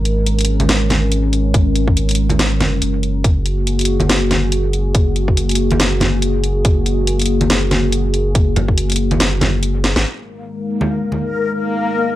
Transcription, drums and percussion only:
0.05 closed hi-hat
0.26 closed hi-hat
0.39 closed hi-hat
0.41 closed hi-hat
0.45 closed hi-hat
0.60 closed hi-hat, high conga
0.69 snare, closed hi-hat
0.90 snare, closed hi-hat, high conga
1.12 closed hi-hat
1.33 closed hi-hat
1.54 kick, closed hi-hat
1.76 closed hi-hat
1.88 kick
1.97 closed hi-hat
2.09 closed hi-hat
2.11 closed hi-hat
2.15 closed hi-hat
2.29 closed hi-hat, high conga
2.39 snare, closed hi-hat
2.60 snare, closed hi-hat, high conga, low conga
2.82 closed hi-hat
3.03 closed hi-hat
3.24 kick, closed hi-hat
3.46 closed hi-hat
3.67 closed hi-hat
3.79 closed hi-hat
3.81 closed hi-hat
3.85 closed hi-hat
4.00 closed hi-hat, high conga
4.10 snare, closed hi-hat
4.31 snare, closed hi-hat, high conga
4.52 closed hi-hat
4.73 closed hi-hat
4.95 kick, closed hi-hat
5.16 closed hi-hat
5.28 kick
5.37 closed hi-hat
5.49 closed hi-hat
5.51 closed hi-hat
5.55 closed hi-hat
5.71 closed hi-hat, high conga
5.80 snare, closed hi-hat
6.00 snare, closed hi-hat, high conga, low conga
6.22 closed hi-hat
6.44 closed hi-hat
6.65 kick, closed hi-hat
6.86 closed hi-hat
7.07 closed hi-hat
7.19 closed hi-hat
7.22 closed hi-hat
7.26 closed hi-hat
7.41 closed hi-hat, high conga
7.50 snare, closed hi-hat
7.71 snare, closed hi-hat, high conga
7.92 closed hi-hat
8.14 closed hi-hat
8.35 kick, closed hi-hat
8.56 closed hi-hat, low conga
8.68 kick
8.78 closed hi-hat
8.90 closed hi-hat
8.92 closed hi-hat
8.96 closed hi-hat
9.11 closed hi-hat, high conga
9.20 snare, closed hi-hat
9.41 snare, closed hi-hat, high conga, low conga
9.63 closed hi-hat
9.84 snare, closed hi-hat
9.96 snare
10.81 high conga
11.12 high conga

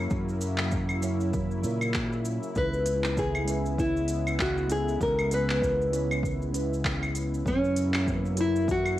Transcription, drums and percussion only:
0.10 kick, cabasa
0.29 cabasa
0.41 cabasa
0.58 clap, cabasa
0.71 kick, cabasa
0.89 cabasa, claves
1.02 cabasa
1.20 cabasa
1.33 kick, cabasa
1.51 cabasa
1.64 cabasa
1.81 cabasa, claves
1.94 kick, clap, cabasa
2.13 cabasa
2.25 cabasa
2.43 cabasa
2.55 kick, cabasa
2.73 cabasa
2.86 closed hi-hat, cabasa
3.04 clap, cabasa
3.17 kick, cabasa
3.35 cabasa, claves
3.48 closed hi-hat, cabasa
3.66 cabasa
3.78 kick, cabasa
3.96 cabasa
4.08 closed hi-hat, cabasa
4.27 cabasa, claves
4.39 kick, clap, cabasa
4.58 cabasa
4.69 closed hi-hat, cabasa
4.88 cabasa
5.01 kick, cabasa
5.19 cabasa, claves
5.31 closed hi-hat, cabasa
5.50 clap, cabasa
5.62 kick, cabasa
5.82 cabasa
5.93 closed hi-hat, cabasa
6.11 cabasa, claves
6.23 kick, cabasa
6.42 cabasa
6.54 closed hi-hat, cabasa
6.73 cabasa
6.84 kick, clap, cabasa
7.03 cabasa, claves
7.15 closed hi-hat, cabasa
7.34 cabasa
7.46 kick, cabasa
7.64 cabasa
7.76 closed hi-hat, cabasa
7.94 clap, cabasa, claves
8.07 kick, cabasa
8.25 cabasa
8.37 closed hi-hat, cabasa
8.56 cabasa
8.68 kick, cabasa
8.86 cabasa, claves

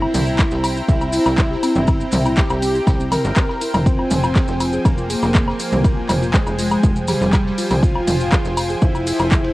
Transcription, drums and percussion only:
0.02 low woodblock
0.14 mid tom, open hi-hat, ride, maracas
0.27 maracas
0.38 kick, snare, clap, ride, low woodblock, maracas
0.51 snare, maracas
0.64 open hi-hat, ride, low woodblock, maracas
0.77 maracas
0.89 kick, ride, maracas
1.01 ride, low woodblock, maracas
1.13 open hi-hat, ride, maracas
1.26 snare, low woodblock, maracas
1.38 kick, snare, clap, ride, maracas
1.52 snare
1.63 open hi-hat, ride, low woodblock, maracas
1.75 mid tom, maracas
1.87 kick, ride, low woodblock, maracas
2.01 maracas
2.12 clap, mid tom, open hi-hat, ride, maracas
2.25 ride, low woodblock, maracas
2.36 kick, snare, clap, ride, maracas
2.50 snare, low woodblock, maracas
2.62 open hi-hat, ride, maracas
2.75 maracas
2.87 kick, snare, ride, low woodblock, maracas
3.00 maracas
3.12 snare, mid tom, open hi-hat, ride, low woodblock, maracas
3.24 snare, maracas
3.36 kick, snare, clap, ride, maracas
3.49 snare, low woodblock
3.61 open hi-hat, ride, maracas
3.74 mid tom, open hi-hat, low woodblock, maracas
3.86 kick, ride, maracas
3.99 low woodblock
4.11 mid tom, open hi-hat, ride, maracas
4.23 low woodblock, maracas
4.36 kick, snare, clap, ride, maracas
4.48 snare, maracas
4.60 open hi-hat, ride, low woodblock, maracas
4.73 maracas
4.85 kick, ride, low woodblock, maracas
4.98 ride, maracas
5.10 open hi-hat, ride, maracas
5.22 snare, low woodblock, maracas
5.35 kick, snare, clap, ride, maracas
5.48 snare, low woodblock
5.60 open hi-hat, ride, maracas
5.72 mid tom, maracas
5.84 kick, ride, low woodblock, maracas
6.09 clap, mid tom, open hi-hat, ride, low woodblock, maracas
6.22 ride, maracas
6.34 kick, snare, clap, ride, maracas
6.46 snare, low woodblock, maracas
6.59 open hi-hat, ride, maracas
6.71 low woodblock, maracas
6.83 kick, ride, maracas
6.96 maracas
7.08 mid tom, open hi-hat, ride, low woodblock, maracas
7.21 snare, maracas
7.33 kick, snare, clap, ride, low woodblock, maracas
7.46 snare
7.58 open hi-hat, ride, maracas
7.71 mid tom, open hi-hat, low woodblock, maracas
7.83 kick, ride, maracas
7.96 low woodblock
8.07 mid tom, open hi-hat, ride, maracas
8.21 maracas
8.32 kick, snare, clap, ride, low woodblock, maracas
8.45 snare, maracas
8.57 open hi-hat, ride, low woodblock, maracas
8.70 maracas
8.82 kick, ride, maracas
8.95 ride, low woodblock, maracas
9.07 open hi-hat, ride, maracas
9.19 low woodblock, maracas
9.32 kick, clap, ride, maracas
9.44 ride

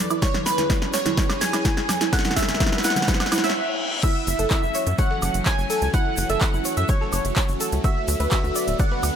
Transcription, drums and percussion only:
0.09 closed hi-hat, high woodblock, shaker
0.22 kick, snare, closed hi-hat, shaker
0.34 snare, high conga, low conga
0.46 snare, closed hi-hat, open hi-hat, shaker
0.58 snare, closed hi-hat, low conga, shaker
0.70 kick, snare, closed hi-hat, high conga, shaker
0.82 snare
0.93 snare, closed hi-hat, open hi-hat, shaker
1.06 snare, closed hi-hat, high conga, low conga, shaker
1.17 kick, snare, closed hi-hat, shaker
1.30 snare, high woodblock, shaker
1.41 snare, closed hi-hat, open hi-hat, high conga, shaker
1.53 snare, closed hi-hat, high woodblock, shaker
1.65 kick, snare, closed hi-hat, shaker
1.77 snare
1.89 snare, closed hi-hat, open hi-hat, high conga, high woodblock, shaker
2.01 snare, closed hi-hat, shaker
2.13 kick, snare, closed hi-hat, shaker
2.19 snare
2.24 snare, closed hi-hat, high conga, low conga, shaker
2.31 snare
2.36 kick, snare, closed hi-hat, open hi-hat, shaker
2.42 snare
2.48 snare, closed hi-hat, low conga, shaker
2.54 snare
2.60 kick, snare, closed hi-hat, high conga, shaker
2.66 snare
2.72 snare
2.78 snare
2.83 snare, closed hi-hat, open hi-hat, shaker
2.90 snare
2.96 snare, closed hi-hat, high conga, low conga, shaker
3.02 snare
3.08 kick, snare, closed hi-hat, shaker
3.14 snare
3.20 snare, high woodblock, shaker
3.26 snare
3.32 snare, closed hi-hat, open hi-hat, high conga, high woodblock, shaker
3.38 snare
3.44 snare, open hi-hat, shaker
3.50 snare
4.03 kick, closed hi-hat, crash, shaker
4.27 closed hi-hat, open hi-hat, shaker
4.39 closed hi-hat, shaker
4.50 kick, snare, clap, closed hi-hat, shaker
4.63 shaker
4.75 closed hi-hat, open hi-hat, shaker
4.87 closed hi-hat, shaker
4.98 kick, closed hi-hat, shaker
5.11 snare
5.22 closed hi-hat, open hi-hat, high woodblock, shaker
5.34 closed hi-hat, shaker
5.46 kick, snare, clap, closed hi-hat, shaker
5.58 snare, shaker
5.70 open hi-hat, shaker
5.82 closed hi-hat, shaker
5.94 kick, closed hi-hat, shaker
6.17 closed hi-hat, open hi-hat, shaker
6.29 snare, closed hi-hat, shaker
6.41 kick, snare, clap, closed hi-hat, shaker
6.54 shaker
6.65 closed hi-hat, open hi-hat, shaker
6.77 closed hi-hat, shaker
6.89 kick, closed hi-hat, shaker
7.01 snare
7.13 closed hi-hat, open hi-hat, high woodblock, shaker
7.25 closed hi-hat, shaker
7.36 kick, snare, clap, closed hi-hat, shaker
7.49 closed hi-hat, shaker
7.60 closed hi-hat, open hi-hat, shaker
7.72 closed hi-hat, shaker
7.84 kick, closed hi-hat, shaker
8.08 closed hi-hat, open hi-hat, shaker
8.20 closed hi-hat, shaker
8.31 kick, snare, clap, closed hi-hat, shaker
8.44 shaker
8.55 closed hi-hat, open hi-hat, shaker
8.68 closed hi-hat, shaker
8.79 kick, closed hi-hat, shaker
8.91 snare
9.03 closed hi-hat, open hi-hat, high woodblock, shaker

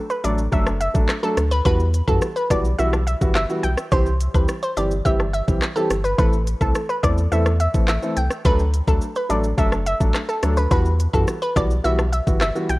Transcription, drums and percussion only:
0.10 shaker
0.24 closed hi-hat, cabasa, high woodblock, shaker
0.38 shaker
0.52 kick, shaker
0.67 cross-stick, high woodblock, shaker
0.81 closed hi-hat, cabasa, shaker
0.95 kick, shaker
1.09 cross-stick, clap, high woodblock, shaker
1.23 shaker
1.37 cross-stick, closed hi-hat, cabasa, shaker
1.51 shaker
1.66 kick, high woodblock, shaker
1.80 shaker
1.94 closed hi-hat, cabasa, shaker
2.08 kick, high woodblock, shaker
2.22 cross-stick, shaker
2.36 shaker
2.50 kick, cross-stick, closed hi-hat, cabasa, high woodblock, shaker
2.65 shaker
2.79 shaker
2.93 cross-stick, high woodblock, shaker
3.07 closed hi-hat, cabasa, shaker
3.21 kick, shaker
3.35 cross-stick, clap, high woodblock, shaker
3.50 shaker
3.64 closed hi-hat, cabasa, shaker
3.77 cross-stick, shaker
3.92 kick, high woodblock, shaker
4.06 shaker
4.20 closed hi-hat, cabasa, shaker
4.34 kick, high woodblock, shaker
4.48 cross-stick, shaker
4.63 shaker
4.77 closed hi-hat, cabasa, high woodblock, shaker
4.91 shaker
5.05 kick, shaker
5.20 cross-stick, high woodblock, shaker
5.34 closed hi-hat, cabasa, shaker
5.48 kick, shaker
5.62 cross-stick, clap, high woodblock, shaker
5.77 shaker
5.90 cross-stick, closed hi-hat, cabasa, shaker
6.05 shaker
6.19 kick, high woodblock, shaker
6.33 shaker
6.47 closed hi-hat, cabasa, shaker
6.61 kick, high woodblock, shaker
6.75 cross-stick, shaker
6.89 shaker
7.03 kick, cross-stick, closed hi-hat, cabasa, high woodblock, shaker
7.18 shaker
7.32 shaker
7.46 cross-stick, high woodblock, shaker
7.60 closed hi-hat, cabasa, shaker
7.74 kick, shaker
7.88 cross-stick, clap, high woodblock, shaker
8.02 shaker
8.17 closed hi-hat, cabasa, shaker
8.30 cross-stick, shaker
8.45 kick, high woodblock, shaker
8.59 shaker
8.73 closed hi-hat, cabasa, shaker
8.87 kick, high woodblock, shaker
9.01 shaker
9.15 shaker
9.30 closed hi-hat, cabasa, high woodblock, shaker
9.44 shaker
9.58 kick, shaker
9.72 cross-stick, high woodblock, shaker
9.86 closed hi-hat, cabasa, shaker
10.01 kick, shaker
10.14 cross-stick, clap, high woodblock, shaker
10.29 shaker
10.43 cross-stick, closed hi-hat, cabasa, shaker
10.57 shaker
10.71 kick, high woodblock, shaker
10.86 shaker
11.00 closed hi-hat, cabasa, shaker
11.14 kick, high woodblock, shaker
11.28 cross-stick, shaker
11.42 shaker
11.56 kick, cross-stick, closed hi-hat, cabasa, high woodblock, shaker
11.71 shaker
11.85 shaker
11.99 cross-stick, high woodblock, shaker
12.13 closed hi-hat, cabasa, shaker
12.27 kick, shaker
12.41 cross-stick, clap, high woodblock, shaker
12.56 shaker
12.69 closed hi-hat, cabasa, shaker

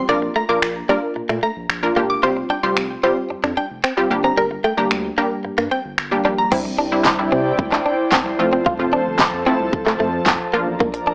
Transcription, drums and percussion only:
0.62 finger snap
1.29 finger snap
1.70 finger snap
2.77 finger snap
3.44 finger snap
3.84 finger snap
4.91 finger snap
5.58 finger snap
5.98 finger snap
6.52 kick, crash
7.05 kick, snare, clap
7.59 kick
7.72 clap
8.12 kick, snare, clap
8.66 kick
9.19 kick, snare, clap
9.73 kick
9.86 clap
10.26 kick, snare, clap
10.80 kick
10.94 closed hi-hat

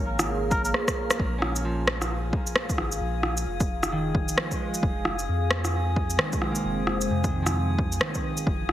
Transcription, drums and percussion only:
0.19 cross-stick, shaker
0.51 kick, shaker
0.65 shaker
0.74 cross-stick
0.88 kick, cross-stick, shaker
1.10 cross-stick, shaker
1.19 kick
1.42 cross-stick
1.56 shaker
1.87 cross-stick
2.02 cross-stick, shaker
2.33 kick
2.47 shaker
2.56 cross-stick
2.69 kick, shaker
2.78 cross-stick
2.92 shaker
3.23 cross-stick
3.37 shaker
3.60 kick, shaker
3.83 cross-stick, shaker
4.15 kick
4.28 shaker
4.38 cross-stick
4.51 kick, shaker
4.74 shaker
4.83 kick
5.05 cross-stick
5.19 shaker
5.51 cross-stick
5.65 cross-stick, shaker
5.96 kick
6.10 shaker
6.19 cross-stick
6.32 kick, shaker
6.42 cross-stick
6.55 shaker
6.87 cross-stick
7.01 shaker
7.24 kick, shaker
7.46 cross-stick, shaker
7.79 kick
7.92 shaker
8.01 cross-stick
8.14 kick, shaker
8.37 shaker
8.47 kick
8.69 cross-stick

